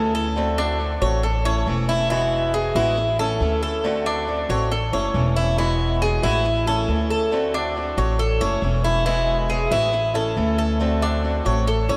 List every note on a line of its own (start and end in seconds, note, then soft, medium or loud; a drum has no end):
0.00 0.96 D2 loud
0.00 0.35 E3 medium
0.00 0.36 A3 medium
0.00 0.37 C#4 medium
0.00 0.37 E4 medium
0.00 0.14 A4 medium
0.15 0.57 A4 medium
0.36 0.78 D3 medium
0.36 0.79 A3 medium
0.36 0.80 C4 loud
0.36 0.80 F#4 medium
0.58 1.00 D4 medium
0.79 1.01 D3 soft
0.79 1.01 A3 soft
0.79 1.01 C4 medium
0.79 1.00 F#4 medium
1.01 1.63 A1 loud
1.01 1.22 A3 medium
1.01 1.23 C4 medium
1.01 1.23 F#4 medium
1.01 1.23 C#5 medium
1.23 1.45 A4 medium
1.23 muted steel-string acoustic guitar stroke medium
1.45 1.67 A3 medium
1.45 1.67 C#4 medium
1.45 1.66 E4 medium
1.45 1.87 C#5 medium
1.67 2.69 E1 medium
1.67 2.09 E3 medium
1.67 2.10 A3 medium
1.67 2.10 C#4 medium
1.67 2.11 E4 medium
1.89 2.09 E4 medium
2.10 2.53 B2 medium
2.10 2.52 E3 medium
2.10 2.53 G#3 medium
2.10 2.54 B3 medium
2.10 2.53 E4 medium
2.10 2.54 F#4 medium
2.54 2.75 E3 medium
2.54 2.75 G#3 soft
2.54 2.75 B3 soft
2.54 2.74 F#4 medium
2.54 2.75 G#4 medium
2.75 3.37 A1 loud
2.75 2.96 E3 medium
2.75 2.97 G#3 medium
2.75 2.97 B3 medium
2.75 3.18 E4 medium
2.75 2.96 F#4 medium
2.97 muted steel-string acoustic guitar stroke medium
3.19 3.40 A3 medium
3.19 3.41 C#4 medium
3.19 3.40 E4 medium
3.19 3.61 A4 medium
3.40 4.43 D2 medium
3.40 3.83 E3 medium
3.40 3.83 A3 medium
3.40 3.84 C#4 medium
3.40 3.84 E4 medium
3.63 4.05 A4 medium
3.84 4.26 D3 medium
3.84 4.27 A3 medium
3.84 4.27 C4 medium
3.84 4.28 F#4 medium
4.06 4.48 D4 medium
4.27 4.48 D3 medium
4.27 4.49 A3 medium
4.27 4.49 C4 soft
4.27 4.48 F#4 medium
4.49 4.90 A1 loud
4.49 4.70 A3 medium
4.49 4.71 C4 medium
4.49 4.70 F#4 medium
4.49 4.71 C#5 medium
4.71 4.93 A4 medium
4.71 muted steel-string acoustic guitar stroke medium
4.93 5.13 F#1 medium
4.93 5.14 A3 medium
4.93 5.14 C#4 medium
4.93 5.14 E4 medium
4.93 5.35 C#5 medium
5.14 6.17 E1 loud
5.14 5.57 E3 medium
5.14 5.57 A3 medium
5.14 5.58 C#4 medium
5.14 5.58 E4 medium
5.36 5.57 E4 medium
5.58 6.01 B2 medium
5.58 6.00 E3 medium
5.58 6.01 G#3 medium
5.58 6.01 B3 medium
5.58 6.00 E4 medium
5.58 6.02 F#4 medium
6.01 6.22 E3 soft
6.01 6.23 G#3 medium
6.01 6.22 B3 medium
6.01 6.21 F#4 medium
6.01 6.23 G#4 medium
6.23 6.85 A1 loud
6.23 6.44 E3 medium
6.23 6.45 G#3 medium
6.23 6.44 B3 medium
6.23 6.66 E4 medium
6.23 6.44 F#4 medium
6.45 muted steel-string acoustic guitar stroke medium
6.67 6.88 A3 medium
6.67 6.88 C#4 medium
6.67 6.88 E4 medium
6.67 7.09 A4 medium
6.88 7.91 D2 medium
6.88 7.31 E3 medium
6.88 7.31 A3 medium
6.88 7.32 C#4 medium
6.88 7.32 E4 medium
7.10 7.53 A4 medium
7.31 7.74 D3 medium
7.31 7.75 A3 medium
7.31 7.75 C4 medium
7.31 7.75 F#4 medium
7.54 7.96 D4 medium
7.76 7.97 D3 soft
7.76 7.97 A3 medium
7.76 7.97 C4 medium
7.76 7.96 F#4 medium
7.97 8.38 A1 loud
7.97 8.18 A3 medium
7.97 8.19 C4 medium
7.97 8.18 F#4 medium
7.97 8.19 C#5 medium
8.19 8.40 A4 medium
8.19 muted steel-string acoustic guitar stroke medium
8.40 8.61 F#1 medium
8.40 8.62 A3 medium
8.40 8.62 C#4 medium
8.40 8.62 E4 medium
8.40 8.83 C#5 medium
8.62 9.65 E1 medium
8.62 9.05 E3 medium
8.62 9.06 A3 medium
8.62 9.06 C#4 medium
8.62 9.06 E4 medium
8.84 9.05 E4 medium
9.05 9.48 B2 medium
9.05 9.48 E3 medium
9.05 9.48 G#3 medium
9.05 9.49 B3 medium
9.05 9.48 E4 medium
9.05 9.49 F#4 medium
9.49 9.70 E3 soft
9.49 9.71 G#3 medium
9.49 9.70 B3 medium
9.49 9.70 F#4 medium
9.49 9.71 G#4 medium
9.71 10.33 A1 medium
9.71 9.92 E3 medium
9.71 9.93 G#3 medium
9.71 9.93 B3 medium
9.71 10.14 E4 medium
9.71 9.92 F#4 medium
9.93 muted steel-string acoustic guitar stroke medium
10.14 10.36 A3 medium
10.14 10.36 C#4 medium
10.14 10.36 E4 medium
10.14 10.57 A4 medium
10.36 11.40 D2 loud
10.36 10.79 E3 medium
10.36 10.79 A3 medium
10.36 10.80 C#4 medium
10.36 10.80 E4 medium
10.58 11.01 A4 medium
10.80 11.22 D3 medium
10.80 11.23 A3 medium
10.80 11.23 C4 medium
10.80 11.24 F#4 medium
11.02 11.45 D4 medium
11.23 11.45 D3 soft
11.23 11.45 A3 soft
11.23 11.45 C4 medium
11.23 11.44 F#4 medium
11.45 11.87 A1 medium
11.45 11.66 A3 medium
11.45 11.67 C4 medium
11.45 11.66 F#4 medium
11.45 11.67 C#5 medium
11.67 11.89 A4 medium
11.67 muted steel-string acoustic guitar stroke medium
11.88 11.97 F#1 medium
11.88 11.97 A3 medium
11.88 11.97 C#4 medium
11.88 11.97 E4 medium
11.88 11.97 C#5 medium